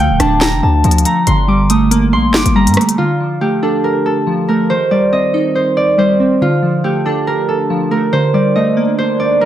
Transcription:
Already playing: synth keys D3 F3, harp F5 C6 D6
0.00 808-style bass D2, synth keys A3, harp G5
0.10 808-style bass D1
0.20 808-style bass D1, synth keys D4, harp A5, cross-stick, closed hi-hat
0.41 harp A#5, snare, clap, closed hi-hat
0.53 808-style bass F1
0.63 808-style bass D2, harp A5
0.84 808-style bass D2, synth keys F3, closed hi-hat
0.91 closed hi-hat
0.98 closed hi-hat
1.05 synth keys A3, harp A#5, closed hi-hat
1.27 808-style bass G1, synth keys D3, harp C6, closed hi-hat
1.48 synth keys G3, harp D6
1.70 synth keys A3, harp D#6, closed hi-hat
1.91 synth keys A#3, closed hi-hat
2.13 808-style bass A#1, harp C6
2.29 808-style bass G1
2.34 harp D6, snare, clap
2.46 808-style bass G1, closed hi-hat
2.55 synth keys G3, harp A#5
2.67 808-style bass G2, closed hi-hat
2.74 synth keys A3, cross-stick, closed hi-hat
2.81 closed hi-hat
2.89 closed hi-hat
2.98 synth keys D3, harp F4
3.20 synth keys F3
3.41 synth keys A3, harp G4
3.63 synth keys D4, harp A4
3.84 harp A#4
4.06 harp A4
4.27 synth keys F3
4.48 synth keys A3, harp A#4
4.70 synth keys D#3, harp C5
4.91 synth keys G3, harp D5
5.12 synth keys C4, harp D#5
5.34 synth keys D#4
5.55 harp C5
5.77 harp D5
5.98 synth keys G3, harp C5
6.20 synth keys C4
6.41 synth keys D3, harp F4
6.62 synth keys F3
6.84 synth keys A3, harp G4
7.05 synth keys D4, harp A4
7.27 harp A#4
7.49 harp A4
7.70 synth keys F3
7.91 synth keys A3, harp A#4
8.13 synth keys D3, harp C5, swell
8.34 synth keys G3, harp D5
8.55 synth keys A3, harp D#5
8.77 synth keys A#3
8.98 harp C5
9.20 harp D5
9.41 synth keys G3, harp A#4

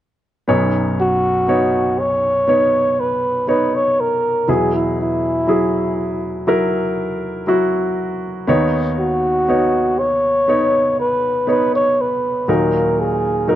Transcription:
0.48 grand piano B1 F#2 B3 D#4 C#5
1.00 flugelhorn F#4
1.48 grand piano B3 D#4 C#5
2.00 flugelhorn C#5
2.48 grand piano B3 D#4 C#5
3.00 flugelhorn B4
3.47 grand piano B3 D#4 C#5, flugelhorn B4
3.75 flugelhorn C#5
4.00 flugelhorn A#4
4.48 grand piano E2 B2 F#3 E4 G#4, flugelhorn G#4
4.75 flugelhorn E4
5.02 flugelhorn E4
5.47 grand piano F#3 E4 G#4
6.47 grand piano F#3 E4 A#4
7.47 grand piano F#3 E4 F#4
8.47 grand piano D#2 D#3 B3 D#4 C#5
9.00 flugelhorn F#4
9.48 grand piano B3 D#4 C#5
9.99 flugelhorn C#5
10.48 grand piano B3 D#4 C#5
11.00 flugelhorn B4
11.47 grand piano B3 D#4 C#5, flugelhorn B4
11.76 flugelhorn C#5
12.01 flugelhorn B4
12.48 grand piano D#2 A#2 F#3 D#4 A#4, flugelhorn A#4
13.00 flugelhorn G#4
13.47 grand piano F#3 D#4 A#4, flugelhorn A#4

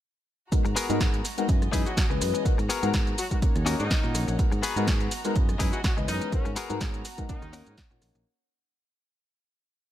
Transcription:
0.52 grand piano G#3 B3 D#4 F#4 A#4, string section B3 F#4 A#5, muted fingered electric bass stroke, kick, closed hi-hat, shaker
0.65 fingered electric bass G#2, muted clean electric guitar stroke, closed hi-hat, shaker
0.76 clean electric guitar B3 F#4 G#4 A#4, open hi-hat, shaker
0.89 fingered electric bass G#2, grand piano G#3 B3 D#4 F#4 A#4, closed hi-hat, shaker
1.00 kick, snare, closed hi-hat, shaker
1.14 closed hi-hat, shaker
1.25 open hi-hat, shaker
1.37 grand piano G#3 B3 D#4 F#4 A#4, closed hi-hat, shaker
1.48 fingered electric bass F#2, string section E3 D#5 G#5, grand piano G#3 D#4 E4 B4, kick, closed hi-hat, shaker
1.62 cross-stick, closed hi-hat, shaker
1.72 fingered electric bass F#2, grand piano G#3 C#4 D#4 E4 B4, clean electric guitar D#4 E4 G#4 B4, kick, open hi-hat, shaker
1.86 horn section F#3 F#4, closed hi-hat, shaker
1.97 horn section F#3 F#4, kick, snare, closed hi-hat, shaker
2.10 fingered electric bass C#2, grand piano E3 G#3 C#4 B4 D#5, muted clean electric guitar stroke, shaker
2.21 fingered electric bass F#2, muted clean electric guitar stroke, cross-stick, open hi-hat, shaker
2.34 muted clean electric guitar stroke, closed hi-hat, shaker
2.45 grand piano G#3 B3 D#4 F#4 A#4, string section F#4 A#5, muted fingered electric bass stroke, kick, closed hi-hat, shaker
2.58 fingered electric bass G#2, muted clean electric guitar stroke, closed hi-hat, shaker
2.69 clean electric guitar B3 F#4 G#4 A#4, open hi-hat, shaker
2.82 fingered electric bass G#2, grand piano G#3 B3 D#4 F#4 A#4, closed hi-hat, shaker
2.94 kick, snare, closed hi-hat, shaker
3.07 closed hi-hat, shaker
3.18 horn section F#3 F#4, open hi-hat, shaker
3.31 horn section F#3 F#4, grand piano G#3 B3 D#4 F#4 A#4, kick, closed hi-hat, shaker
3.42 grand piano A#3 C#4 D#4 F#4 A#4, string section D#4 C#5 F#5, kick, closed hi-hat, shaker
3.56 fingered electric bass D#2, cross-stick, closed hi-hat, shaker
3.66 grand piano A#3 C#4 D#4 F#4 A#4, clean electric guitar C#4 D#4 F#4 A#4, open hi-hat, shaker
3.79 fingered electric bass G#2, horn section D#3 D#4, closed hi-hat, shaker
3.91 kick, snare, closed hi-hat, shaker
4.03 fingered electric bass A#2, grand piano A#3 C#4 D#4 F#4 A#4, muted clean electric guitar stroke, shaker
4.15 fingered electric bass A#1, muted clean electric guitar stroke, cross-stick, open hi-hat, shaker
4.28 fingered electric bass A#1, muted clean electric guitar stroke, closed hi-hat, shaker
4.39 grand piano G#3 B3 D#4 F#4 A#4, string section B3 F#4 A#5, muted fingered electric bass stroke, kick, closed hi-hat, shaker
4.52 fingered electric bass G#2, muted clean electric guitar stroke, closed hi-hat, shaker
4.63 clean electric guitar B3 F#4 G#4 B4, open hi-hat, shaker
4.76 fingered electric bass G#2, grand piano G#3 B3 D#4 F#4 A#4, closed hi-hat, shaker
4.87 kick, snare, closed hi-hat, shaker
5.00 closed hi-hat, shaker
5.11 open hi-hat, shaker
5.24 grand piano G#3 B3 D#4 F#4 A#4, closed hi-hat, shaker
5.35 fingered electric bass F#2, string section E3 D#5 G#5, grand piano G#3, kick, closed hi-hat, shaker
5.49 cross-stick, closed hi-hat, shaker
5.59 fingered electric bass F#2, grand piano G#3 C#4 D#4 E4 B4, clean electric guitar D#4 E4 G#4 B4, kick, open hi-hat, shaker
5.73 horn section F#3 F#4, closed hi-hat, shaker
5.84 horn section F#3 F#4, kick, snare, closed hi-hat, shaker
5.97 fingered electric bass C#2, grand piano E3 G#3 C#4 B4 D#5, muted clean electric guitar stroke, shaker
6.08 fingered electric bass F#2, horn section D#3 D#4, muted clean electric guitar stroke, cross-stick, open hi-hat, shaker
6.21 muted clean electric guitar stroke, closed hi-hat, shaker
6.32 horn section C#3 C#4, grand piano G#3 B3 D#4 F#4 A#4, string section F#4 A#5, muted fingered electric bass stroke, kick, closed hi-hat, shaker
6.45 fingered electric bass G#2, muted clean electric guitar stroke, closed hi-hat, shaker
6.56 clean electric guitar B3 F#4 G#4 A#4, open hi-hat, shaker
6.69 fingered electric bass G#2, grand piano G#3 B3 D#4 F#4 A#4, closed hi-hat, shaker
6.81 kick, snare, closed hi-hat, shaker
6.94 closed hi-hat, shaker
7.05 open hi-hat, shaker
7.18 grand piano G#3 B3 D#4 F#4 A#4, kick, closed hi-hat, shaker
7.29 horn section D#3 D#4, grand piano A#3 C#4 D#4 A#4, string section D#4 C#5 F#5, kick, closed hi-hat, shaker
7.42 fingered electric bass D#2, cross-stick, closed hi-hat, shaker
7.53 grand piano A#3 C#4 D#4 F#4 A#4, clean electric guitar C#4 D#4 F#4 A#4, open hi-hat, shaker
7.66 fingered electric bass G#2, closed hi-hat, shaker
7.78 kick, snare, closed hi-hat, shaker
7.90 fingered electric bass A#2, grand piano A#3 C#4 D#4 F#4 A#4, muted clean electric guitar stroke, shaker
8.02 fingered electric bass A#1, muted clean electric guitar stroke, cross-stick, open hi-hat, shaker
8.15 fingered electric bass A#1, muted clean electric guitar stroke, closed hi-hat, shaker

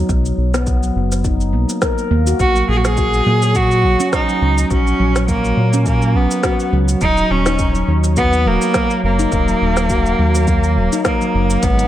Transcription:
0.09 analog synth bass B1, handpan F#3, kick, shaker
0.25 shaker
0.38 analog synth bass B1
0.54 handpan B3, snare, shaker
0.67 kick, shaker
0.83 handpan F#3, shaker
0.96 analog synth bass F#1
1.12 shaker
1.25 handpan D#4, kick, shaker
1.41 shaker
1.53 analog synth bass B1, handpan A#3
1.69 shaker
1.82 handpan A#4, kick, snare, shaker
1.98 shaker
2.11 analog synth bass D#2, handpan A#3
2.27 handpan F#4, shaker
2.40 analog synth bass A#1, cello F#4, kick, shaker
2.56 handpan F#3, shaker
2.69 analog synth bass A#1, cello G#4
2.77 cello F#4
2.85 cello G#4, snare, shaker
2.97 handpan F#4, kick, shaker
3.14 shaker
3.27 analog synth bass A#2, handpan F#3
3.42 shaker
3.55 handpan F#3, cello F#4, kick, shaker
3.71 shaker
3.84 analog synth bass A#1
4.00 handpan C#4, shaker
4.13 cello D#4, kick, snare, shaker
4.29 handpan F#3, shaker
4.42 analog synth bass C#2
4.58 shaker
4.71 analog synth bass A#1, cello C#4, handpan F#4, kick, shaker
4.87 shaker
5.00 analog synth bass A#1, handpan F#3
5.16 snare, shaker
5.28 handpan F#3, cello A#3, kick, shaker
5.45 shaker
5.57 analog synth bass A#2
5.73 handpan C#4, shaker
5.86 cello A#3, kick, shaker
6.02 handpan F#3, shaker
6.15 analog synth bass A#1, cello B3
6.31 shaker
6.43 handpan F#4, kick, snare, shaker
6.60 shaker
6.73 analog synth bass C#2, handpan F#3
6.88 shaker
7.01 analog synth bass D#1, handpan F#3, cello D#4, kick, shaker
7.17 shaker
7.30 analog synth bass D#1, cello C#4
7.46 handpan D#4, snare, shaker
7.59 kick, shaker
7.75 handpan F#3, shaker
7.88 analog synth bass D#2
8.04 shaker
8.17 cello B3, handpan F#4, kick, shaker
8.33 shaker
8.46 analog synth bass D#1, handpan F#3, cello A#3
8.62 shaker
8.74 handpan F#3, kick, snare, shaker
8.90 shaker
9.04 analog synth bass F#1, cello A#3
9.19 handpan D#4, shaker
9.32 analog synth bass D#1, kick, shaker
9.48 handpan F#3, shaker
9.62 analog synth bass D#1
9.77 snare, shaker
9.90 handpan F#4, kick, shaker
10.06 shaker
10.19 analog synth bass D#2, handpan F#3
10.35 shaker
10.48 handpan F#3, kick, shaker
10.64 shaker
10.77 analog synth bass D#1
10.93 handpan D#4, shaker
11.05 cello A#3, kick, snare, shaker
11.21 handpan F#3, shaker
11.35 analog synth bass F#1
11.50 shaker
11.63 analog synth bass G#1, handpan G#3, cello B3, kick, closed hi-hat, shaker
11.79 closed hi-hat, shaker

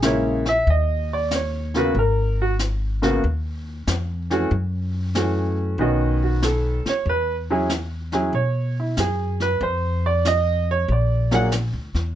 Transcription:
Already playing: upright bass A#1
0.02 upright piano C#3 G#3 A#3 E4 C#5, snare, hi-hat pedal
0.46 upright piano E5, snare
0.67 upright bass D#2, upright piano D#5, brush sweep
1.13 upright piano D5
1.31 upright piano C#5, snare, hi-hat pedal
1.74 upright piano C#3 A#3 B3 F#4 B4, snare
1.95 upright bass G#1, upright piano A#4, brush sweep
2.42 upright piano F#4
2.59 snare, hi-hat pedal
3.02 upright piano C#3 A#3 B3 F#4, snare
3.24 upright bass D#2, brush sweep
3.87 upright bass F2, snare, hi-hat pedal
4.30 upright piano E3 A3 C#4 F#4, snare
4.51 upright bass F#2, brush sweep
5.15 upright piano E3 A3 C#4 F#4, snare, hi-hat pedal
5.78 upright bass B1, upright piano D#3 B3 C#4 F#4 D#5, brush sweep
6.24 upright piano F#4
6.42 upright piano A4, snare, hi-hat pedal
6.86 upright piano C#5, muted upright bass stroke, snare
7.06 upright bass E2, upright piano B4, brush sweep
7.50 upright piano F#3 C#4 E4 G#4
7.69 snare, hi-hat pedal
8.12 upright piano F#3 C#4 E4 G#4, snare
8.33 upright bass B2, upright piano C#5, brush sweep
8.80 upright piano E4
8.97 upright bass F#2, upright piano G#4, snare, hi-hat pedal
9.40 upright piano B4, snare
9.61 upright bass F2, upright piano C5, brush sweep
10.06 upright piano D5
10.25 upright piano D#5, snare, hi-hat pedal
10.71 upright piano C#5
10.88 upright bass A#1, upright piano D5, brush sweep
11.31 upright piano F#3 A#3 D4 G#4 F#5, snare
11.52 snare, hi-hat pedal
11.73 upright bass D2
11.94 upright bass E2, snare

